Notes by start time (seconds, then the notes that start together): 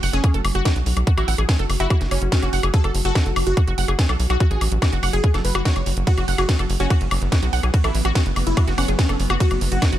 Already playing: F#3 F#4
0.03 F#1 F#5, open hi-hat
0.13 F#1 C#4 G#4, closed hi-hat
0.24 G#4, kick, closed hi-hat, high woodblock
0.34 F#1 A4, closed hi-hat
0.45 F#1, open hi-hat, high woodblock
0.55 F#1 F#4, closed hi-hat
0.65 F#4, kick, snare, closed hi-hat, high woodblock
0.76 B1, closed hi-hat
0.86 B1, open hi-hat
0.97 B1, closed hi-hat, high woodblock
1.07 F#4, kick, closed hi-hat
1.17 A1 E4 F#4, closed hi-hat, high woodblock
1.28 A1 F#5, open hi-hat
1.38 A1 G#4, closed hi-hat, high woodblock
1.49 G#4, kick, snare, closed hi-hat
1.59 F#1 A4, closed hi-hat
1.70 F#1, open hi-hat, high woodblock
1.80 F#1 E4 F#4, closed hi-hat
1.90 F#4, kick, closed hi-hat, high woodblock
2.01 F#1, snare, closed hi-hat
2.11 F#1 C#4, open hi-hat, high woodblock
2.22 F#1, closed hi-hat
2.32 C#4 F#4, kick, snare, closed hi-hat
2.42 F#1 F#4, closed hi-hat, high woodblock
2.53 F#1 F#5, open hi-hat
2.63 F#1 G#4, closed hi-hat, high woodblock
2.74 G#4 A4, kick, closed hi-hat
2.84 F#1 A4, closed hi-hat, high woodblock
2.95 F#1, open hi-hat
3.05 F#1 F#4 A4, closed hi-hat
3.15 F#4, kick, snare, closed hi-hat, high woodblock
3.26 F#1, closed hi-hat
3.36 F#1, open hi-hat, high woodblock
3.47 F#1 F#4, closed hi-hat
3.57 F#4, kick, closed hi-hat, high woodblock
3.67 F#1 F#4, closed hi-hat
3.78 F#1 F#5, open hi-hat
3.88 F#1 G#4, closed hi-hat, high woodblock
3.99 G#4, kick, snare, closed hi-hat
4.09 B1 A4, closed hi-hat, high woodblock
4.20 B1, open hi-hat
4.30 B1 F#4, closed hi-hat, high woodblock
4.40 F#4, kick, closed hi-hat
4.51 A1 G#4, closed hi-hat
4.61 A1, open hi-hat, high woodblock
4.72 A1, closed hi-hat
4.82 F#4, kick, snare, closed hi-hat, high woodblock
4.92 F#1 F#4, closed hi-hat
5.03 F#1 F#5, open hi-hat, high woodblock
5.13 F#1 G#4, closed hi-hat
5.24 G#4, kick, closed hi-hat
5.34 F#1 A4, snare, closed hi-hat, high woodblock
5.45 F#1 B4, open hi-hat
5.55 F#1 F#4, closed hi-hat, high woodblock
5.65 F#4 C#5, kick, snare, closed hi-hat
5.76 F#1, closed hi-hat, high woodblock
5.86 F#1, open hi-hat
5.97 F#1, closed hi-hat
6.07 B3 F#4, kick, closed hi-hat, ride
6.17 F#1 F#4, closed hi-hat, high woodblock
6.28 F#1 F#5, open hi-hat
6.38 F#1 F#4 G#4, closed hi-hat, high woodblock
6.49 F#4, kick, snare, closed hi-hat, ride
6.59 F#1 A4, closed hi-hat, high woodblock
6.70 F#1, open hi-hat
6.80 F#1 C#4 F#4, closed hi-hat
6.90 F#4, kick, closed hi-hat, ride, high woodblock
7.01 F#1, closed hi-hat
7.11 F#1, open hi-hat, high woodblock
7.22 F#1, closed hi-hat
7.32 F#4, kick, snare, closed hi-hat, ride, high woodblock
7.43 B1 F#4, closed hi-hat
7.53 B1 F#5, open hi-hat
7.63 B1 G#4, closed hi-hat, high woodblock
7.74 F#4, kick, closed hi-hat, ride
7.84 A1 E4 A4, closed hi-hat, high woodblock
7.95 A1, open hi-hat
8.05 A1 F#4, closed hi-hat, high woodblock
8.15 F#4, kick, snare, closed hi-hat, ride
8.26 F#1, closed hi-hat
8.36 F#1, open hi-hat, high woodblock
8.47 F#1 E4, closed hi-hat
8.57 F#4, kick, closed hi-hat, ride, high woodblock
8.67 F#1 F#4, snare, closed hi-hat
8.78 F#1 C#4 F#5, open hi-hat, high woodblock
8.88 F#1 G#4, closed hi-hat
8.99 C#4 F#4, kick, snare, closed hi-hat, ride
9.09 F#1 A4, closed hi-hat, high woodblock
9.20 F#1, open hi-hat
9.30 F#1 F#4, closed hi-hat, high woodblock
9.40 F#4, kick, closed hi-hat, ride
9.51 F#1, closed hi-hat, high woodblock
9.61 F#1, open hi-hat
9.72 F#1 F#4, closed hi-hat
9.82 F#4, kick, snare, closed hi-hat, ride, high woodblock
9.92 F#1 F#4, closed hi-hat